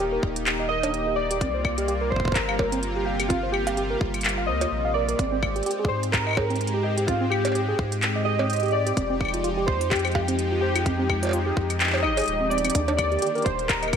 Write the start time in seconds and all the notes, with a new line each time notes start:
Already playing: D#1 D#3 A#3 D#4 G4
0.13 A#4
0.23 D#1, kick
0.36 closed hi-hat
0.47 clap, closed hi-hat
0.60 D#5
0.69 A#4 D#5
0.83 D4, closed hi-hat, cowbell
0.94 closed hi-hat
1.07 G4
1.16 D5 D#5
1.31 G4, closed hi-hat
1.41 C2 C3 G3 C4 F4, kick, closed hi-hat
1.54 C5
1.65 kick, claves
1.78 G4, closed hi-hat
1.88 G4, closed hi-hat
2.02 A#4
2.10 G1 C5, kick
2.16 kick
2.20 kick
2.25 kick
2.28 kick
2.32 A#4, kick, clap, closed hi-hat
2.36 kick
2.49 F5, claves
2.59 A#4, kick, cowbell
2.72 C4, closed hi-hat
2.83 closed hi-hat
2.96 G4
3.05 G4 F5
3.20 G4, closed hi-hat, claves
3.28 C4 F4, kick, closed hi-hat
3.43 C5
3.52 G4, claves
3.67 G4, closed hi-hat, cowbell
3.77 G4, closed hi-hat
3.90 A#4
4.01 G1, kick
4.14 closed hi-hat, claves
4.16 claves
4.18 claves
4.20 closed hi-hat, claves
4.22 clap, closed hi-hat, claves
4.29 closed hi-hat
4.38 F5
4.47 D2 C5 D#5
4.61 F4, closed hi-hat, cowbell
4.72 A#1
4.85 F5
4.94 A#4 D5
5.09 A#4, closed hi-hat
5.19 G#1 G#3 C4 G4, kick, closed hi-hat
5.32 C4
5.43 kick, claves
5.56 G4, closed hi-hat
5.63 G4, closed hi-hat
5.66 closed hi-hat
5.71 closed hi-hat
5.80 G#4
5.85 C5, kick
5.90 G#2
6.03 closed hi-hat
6.12 A#4, kick, clap, closed hi-hat
6.27 D#5, claves
6.29 claves
6.31 claves
6.33 claves
6.35 G#4, kick, cowbell, claves
6.50 C4, closed hi-hat
6.56 closed hi-hat
6.61 closed hi-hat
6.67 closed hi-hat
6.74 G4
6.83 G4 D#5
6.97 G4, closed hi-hat
7.07 C4 F4, kick, closed hi-hat
7.21 C4
7.30 G4, claves
7.45 G4, closed hi-hat, cowbell
7.47 cowbell
7.52 G4, closed hi-hat, cowbell
7.68 G#4
7.79 G#2, kick
7.92 closed hi-hat
8.03 clap, closed hi-hat
8.16 D#5
8.25 G#4 D#5
8.39 C4, cowbell
8.50 closed hi-hat
8.53 closed hi-hat
8.56 closed hi-hat
8.60 G4, closed hi-hat
8.63 closed hi-hat
8.66 closed hi-hat
8.68 closed hi-hat
8.71 D5 D#5, closed hi-hat
8.87 G4, closed hi-hat
8.97 F1 F3 G#3 C4 D#4, kick, closed hi-hat
9.10 C4
9.21 kick, claves
9.25 claves
9.28 claves
9.34 F4, closed hi-hat
9.44 F4, closed hi-hat
9.57 G4
9.66 F2 C5, kick
9.81 closed hi-hat
9.90 G4, kick, clap, closed hi-hat
9.96 closed hi-hat
9.99 closed hi-hat
10.05 C5, closed hi-hat, claves
10.07 closed hi-hat
10.12 G4, kick, closed hi-hat, cowbell
10.28 C4, closed hi-hat
10.39 closed hi-hat
10.52 F4
10.61 G4 C5
10.76 F4, closed hi-hat, claves
10.86 C4, kick, closed hi-hat
10.99 C4
11.10 kick, claves
11.23 F4, closed hi-hat, cowbell
11.25 cowbell
11.27 cowbell
11.29 cowbell
11.31 F4, closed hi-hat, cowbell
11.46 G4
11.57 F2, kick
11.70 closed hi-hat, claves
11.80 clap, closed hi-hat
11.84 clap
11.87 clap
11.90 C5, clap
11.94 clap, cowbell
11.96 clap
11.99 clap
12.02 G1 D#4 D#5, clap, claves
12.17 G#4, closed hi-hat, cowbell
12.19 closed hi-hat
12.21 closed hi-hat
12.24 closed hi-hat
12.26 closed hi-hat
12.28 D#1, closed hi-hat
12.41 C4
12.50 C4 D5, closed hi-hat
12.58 closed hi-hat
12.65 C4, closed hi-hat, claves
12.70 closed hi-hat
12.75 D#2 D3 D#3 A#3 D4 G4, kick, closed hi-hat
12.88 D4, closed hi-hat, cowbell
12.97 D5, kick, closed hi-hat, claves
13.12 G4, closed hi-hat
13.19 G4, closed hi-hat
13.22 closed hi-hat
13.35 A#4, closed hi-hat
13.38 closed hi-hat
13.42 D#1 C5, kick, closed hi-hat
13.46 closed hi-hat
13.59 closed hi-hat
13.68 A#4, kick, clap, closed hi-hat
13.83 D#5, closed hi-hat, claves
13.88 claves
13.93 A#4, kick, closed hi-hat, claves